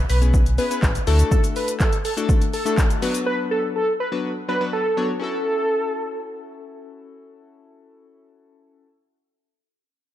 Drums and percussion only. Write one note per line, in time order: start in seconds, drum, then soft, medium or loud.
0.10 open hi-hat medium
0.10 shaker medium
0.22 closed hi-hat medium
0.22 shaker medium
0.34 kick loud
0.34 shaker medium
0.46 closed hi-hat soft
0.46 shaker soft
0.58 open hi-hat medium
0.58 shaker medium
0.71 closed hi-hat medium
0.71 shaker medium
0.83 kick loud
0.83 clap loud
0.83 shaker medium
0.95 closed hi-hat medium
0.95 shaker medium
1.07 open hi-hat medium
1.07 shaker medium
1.19 closed hi-hat medium
1.19 shaker medium
1.31 kick loud
1.31 shaker medium
1.44 closed hi-hat medium
1.44 shaker medium
1.56 open hi-hat medium
1.56 shaker medium
1.68 closed hi-hat medium
1.68 shaker medium
1.80 kick loud
1.80 clap loud
1.80 shaker medium
1.93 closed hi-hat medium
1.93 shaker medium
2.05 open hi-hat medium
2.05 shaker medium
2.17 closed hi-hat medium
2.17 shaker medium
2.29 kick loud
2.29 shaker medium
2.42 closed hi-hat soft
2.42 shaker soft
2.54 open hi-hat medium
2.54 shaker medium
2.66 closed hi-hat medium
2.66 shaker medium
2.78 kick loud
2.78 clap loud
2.78 shaker medium
2.90 closed hi-hat medium
2.90 shaker medium
3.02 open hi-hat medium
3.02 shaker medium
3.14 closed hi-hat medium
3.14 shaker medium